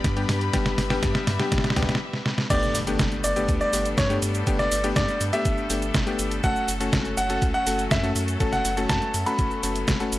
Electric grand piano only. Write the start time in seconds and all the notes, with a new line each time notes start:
Already playing: G3 B3 D4 G4
0.17 G3 B3 D4 G4
0.53 G3 B3 D4 G4
0.90 G3 B3 D4 G4
1.39 G3 B3 D4 G4
1.76 G3 B3 D4 G4
2.50 A3 B3 D4 G4
2.87 A3 B3 D4 G4
3.36 A3 B3 D4 G4
3.73 A3 B3 D4 G4
4.10 A3 B3 D4 G4
4.47 A3 B3 D4 G4
4.84 A3 B3 D4 G4
5.33 A3 B3 D4 G4
5.70 A3 B3 D4 G4
6.07 A3 B3 D4 G4
6.44 A3 C#4 F#4 A4
6.80 A3 C#4 F#4 A4
7.30 A3 C#4 F#4 A4
7.67 A3 C#4 F#4 A4
8.03 A3 C#4 F#4 A4
8.40 A3 C#4 F#4 A4
8.77 A3 C#4 F#4 A4
9.26 A3 C#4 F#4 A4
9.63 A3 C#4 F#4 A4
10.00 A3 C#4 F#4 A4